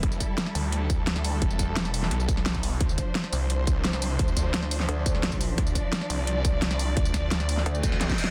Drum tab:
HH |x-----x-----x-----o-----x-----x-----x-----o-----|x-----x-----x-----o-----x-----x-----x-----o-----|x-----x-----x-----o-----x-----x-----x-----o-----|x-----x-----x-----o-----x-----x-----x-----o-----|
TB |---x--x-----------x-----------x--------x--x-----|---x--x--------x--x--------x--x--------x--x-----|---x--x-----------x-----------x--------x--x-----|---x--x-----------x-----------x--------x--x-----|
SD |------------o--o--------------------o--o--------|------------o--o-----o-----------o--o-----------|------------o--o--------------------o--o--------|------------o--o-----o-----------o--o-----------|
BD |o-----o-----------------------o-----------------|o-----o-----------------------o--------o--------|o-----o-----------------------o-----------------|o-----o-----------------------o--------o--------|

HH |x-----x-----x-----o-----x-----x-----x-----o-----|x-----x-----x-----o-----x-----x-----x-----o-----|
TB |---x--x-----------x-----------x--------x--x-----|---x--x--------x--x--------x--x--------x--x-----|
SD |------------o--o--------------------o--o--------|------o-----o--o-----o-----------o--o---o---o---|
BD |o-----o-----------------------o-----------------|o-----o-----------------------o--------o--------|